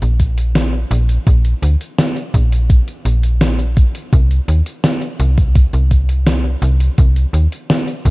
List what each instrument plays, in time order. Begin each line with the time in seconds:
0.02 fm bass A#1, closed hi-hat
0.20 kick, closed hi-hat
0.38 closed hi-hat
0.55 snare, closed hi-hat
0.91 fm bass A#1, closed hi-hat
1.09 closed hi-hat
1.27 fm bass A#1, kick, closed hi-hat
1.45 closed hi-hat
1.62 fm bass D2, closed hi-hat
1.81 closed hi-hat
1.98 snare, closed hi-hat
2.17 closed hi-hat
2.34 fm bass A#1, kick, closed hi-hat
2.52 closed hi-hat
2.70 kick, closed hi-hat
2.88 closed hi-hat
3.05 fm bass A#1, closed hi-hat
3.23 closed hi-hat
3.41 snare, closed hi-hat
3.59 closed hi-hat
3.77 kick, closed hi-hat
3.95 closed hi-hat
4.13 fm bass C2, kick, closed hi-hat
4.31 closed hi-hat
4.48 fm bass D#2, closed hi-hat
4.66 closed hi-hat
4.84 snare, closed hi-hat
5.02 closed hi-hat
5.20 fm bass C2, closed hi-hat
5.38 kick, closed hi-hat
5.55 kick, closed hi-hat
5.73 fm bass C2, closed hi-hat
5.91 kick, closed hi-hat
6.09 closed hi-hat
6.27 snare, closed hi-hat
6.62 fm bass C2, closed hi-hat
6.80 closed hi-hat
6.98 fm bass C2, kick, closed hi-hat
7.16 closed hi-hat
7.33 fm bass D#2, closed hi-hat
7.52 closed hi-hat
7.70 snare, closed hi-hat
7.88 closed hi-hat
8.05 fm bass C2, kick, closed hi-hat